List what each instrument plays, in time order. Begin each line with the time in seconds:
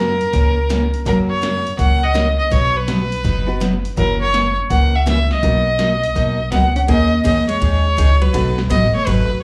Already playing: upright bass F#2, honky-tonk piano C#4 E4 F#4 A#4, fiddle A#4
0.21 open hi-hat
0.33 upright bass C#2, steel-string acoustic guitar C#3 E3 A#3 C#4 F#4, kick, open hi-hat
0.69 steel-string acoustic guitar C#3 E3 A#3 C#4 F#4, snare, closed hi-hat
0.94 open hi-hat
1.05 upright bass F#2, steel-string acoustic guitar C#3 F#3 A#3 C#4 F#4, honky-tonk piano A#3 C#4 F#4 A#4, fiddle A#4, kick, open hi-hat
1.29 fiddle C#5
1.41 steel-string acoustic guitar C#3 F#3 A#3 C#4 F#4, snare, closed hi-hat
1.67 open hi-hat
1.78 upright bass C#2, steel-string acoustic guitar C#3 F#3 A#3 C#4 F#4, fiddle F#5, kick, open hi-hat
2.03 fiddle D#5
2.14 steel-string acoustic guitar C#3 F#3 A#3 C#4 F#4, snare, closed hi-hat
2.38 fiddle D#5
2.50 upright bass B1, steel-string acoustic guitar B2 F#3 B3 D#4 F#4, fiddle C#5, kick, open hi-hat
2.76 fiddle B4
2.87 steel-string acoustic guitar B2 F#3 B3 D#4 F#4, snare, closed hi-hat
3.12 open hi-hat
3.23 upright bass F#1, steel-string acoustic guitar B2 F#3 B3 D#4 F#4, kick, open hi-hat
3.46 honky-tonk piano B3 D#4 F#4 B4
3.60 steel-string acoustic guitar B2 F#3 B3 D#4 F#4, snare, closed hi-hat
3.85 open hi-hat
3.96 upright bass F#1, steel-string acoustic guitar C#3 E3 A#3 C#4 F#4, honky-tonk piano C#4 E4 F#4 A#4, fiddle A#4, kick, open hi-hat
4.21 fiddle C#5
4.33 steel-string acoustic guitar C#3 E3 A#3 C#4 F#4, snare, closed hi-hat
4.70 upright bass C#2, steel-string acoustic guitar C#3 E3 A#3 C#4 F#4, fiddle F#5, kick, open hi-hat
4.95 fiddle E5
5.06 steel-string acoustic guitar C#3 E3 A#3 C#4 F#4, fiddle E5, snare, closed hi-hat
5.31 fiddle D#5, snare
5.42 upright bass B1, steel-string acoustic guitar B2 F#3 A#3 D#4 F#4, honky-tonk piano B3 D#4 F#4 A#4, kick, open hi-hat
5.78 steel-string acoustic guitar B2 F#3 A#3 D#4 F#4, snare, closed hi-hat
6.04 open hi-hat
6.15 upright bass B1, steel-string acoustic guitar B2 F#3 A#3 D#4 F#4, kick, open hi-hat
6.52 upright bass C#2, steel-string acoustic guitar B2 F#3 A#3 D#4 F#4, hollow-body jazz guitar B3, fiddle F#5, snare, closed hi-hat
6.76 hollow-body jazz guitar C#4, fiddle F#5, open hi-hat
6.87 upright bass D#2, steel-string acoustic guitar D#3 G#3 C#4 D#4 G#4, honky-tonk piano A#3 C#4 D#4 G#4 A#4, hollow-body jazz guitar A#3, fiddle D#5, kick, ride
7.24 upright bass E2, steel-string acoustic guitar D#3 G#3 C#4 D#4 G#4, hollow-body jazz guitar A#3, fiddle D#5, kick, hi-hat pedal, ride
7.48 hollow-body jazz guitar G#3, fiddle C#5, ride
7.60 upright bass D#2, steel-string acoustic guitar D#3 G#3 C#4 D#4 G#4, kick, ride
7.97 upright bass C#2, steel-string acoustic guitar D#3 G#3 C#4 D#4 G#4, kick, hi-hat pedal, ride
8.21 hollow-body jazz guitar F#3, fiddle B4, ride
8.33 upright bass B1, steel-string acoustic guitar B2 F#3 A3 D#4 F#4, honky-tonk piano B3 D#4 F#4 A4 B4, kick, ride
8.58 snare
8.70 upright bass A1, steel-string acoustic guitar B2 F#3 A3 D#4 F#4, hollow-body jazz guitar B3, fiddle D#5, kick, hi-hat pedal, ride
8.94 hollow-body jazz guitar A3, fiddle C#5, muted upright bass stroke
9.06 upright bass G#1, steel-string acoustic guitar B2 F#3 A3 D#4 F#4, hollow-body jazz guitar F#3, fiddle B4, kick, ride
9.30 muted upright bass stroke